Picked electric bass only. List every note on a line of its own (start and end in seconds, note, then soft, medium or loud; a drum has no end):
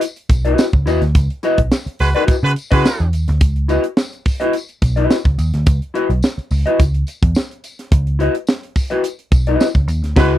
0.30 0.53 B1 medium
0.73 0.87 C#2 medium
0.87 0.99 D#2 medium
1.02 1.13 D2 loud
1.15 1.27 C#2 loud
1.59 1.69 B1 loud
1.86 muted picked electric bass stroke soft
2.00 2.13 C#2 loud
2.43 2.54 C#3 loud
2.72 2.83 C#3 medium
3.00 3.13 E2 medium
3.13 3.26 D#2 medium
3.29 3.41 D2 loud
3.41 3.77 C#2 loud
4.82 5.06 B1 medium
5.25 5.36 C#2 medium
5.38 5.51 D#2 loud
5.54 5.65 D2 medium
5.67 5.79 C#2 loud
6.10 6.21 B1 medium
6.38 muted picked electric bass stroke soft
6.51 6.63 C#2 medium
6.79 7.03 C#2 loud
7.23 7.33 E2 medium
7.92 8.27 C#2 loud
9.32 9.55 B1 medium
9.75 9.87 C#2 medium
9.87 10.02 D#2 medium
10.02 10.16 D2 medium
10.17 10.36 C#2 loud